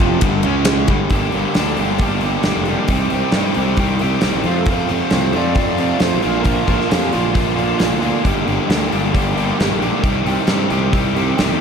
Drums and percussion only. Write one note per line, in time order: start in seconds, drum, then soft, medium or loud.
0.00 kick loud
0.21 kick loud
0.21 clap medium
0.21 ride medium
0.43 ride medium
0.65 snare loud
0.65 clap medium
0.65 ride medium
0.88 kick medium
0.88 ride medium
1.10 kick medium
1.10 open hi-hat medium
1.32 open hi-hat soft
1.55 snare medium
1.55 open hi-hat medium
1.77 open hi-hat soft
1.98 kick medium
1.98 open hi-hat medium
2.21 open hi-hat soft
2.43 snare loud
2.43 open hi-hat medium
2.65 open hi-hat soft
2.88 kick medium
2.88 open hi-hat medium
3.10 open hi-hat soft
3.32 snare medium
3.32 open hi-hat medium
3.54 open hi-hat soft
3.77 kick medium
3.77 open hi-hat medium
3.99 open hi-hat soft
4.21 snare loud
4.21 open hi-hat medium
4.44 open hi-hat soft
4.66 kick loud
4.66 open hi-hat medium
4.89 open hi-hat soft
5.10 snare medium
5.10 open hi-hat medium
5.33 open hi-hat soft
5.55 kick medium
5.55 open hi-hat medium
5.78 open hi-hat soft
6.00 snare medium
6.00 open hi-hat medium
6.22 open hi-hat soft
6.44 kick medium
6.44 open hi-hat medium
6.67 kick medium
6.67 open hi-hat soft
6.81 snare soft
6.91 snare medium
6.91 open hi-hat medium
7.13 open hi-hat soft
7.35 kick medium
7.35 open hi-hat medium
7.59 open hi-hat soft
7.79 snare medium
7.79 open hi-hat medium
8.03 open hi-hat soft
8.25 kick medium
8.25 open hi-hat medium
8.48 open hi-hat soft
8.70 snare medium
8.70 open hi-hat medium
8.93 open hi-hat soft
9.15 kick medium
9.15 open hi-hat medium
9.38 open hi-hat soft
9.60 snare loud
9.60 open hi-hat medium
9.82 open hi-hat soft
10.04 kick medium
10.04 open hi-hat medium
10.27 open hi-hat soft
10.47 snare loud
10.47 open hi-hat medium
10.70 open hi-hat soft
10.93 kick loud
10.93 open hi-hat medium
11.16 open hi-hat soft
11.38 snare medium
11.38 open hi-hat medium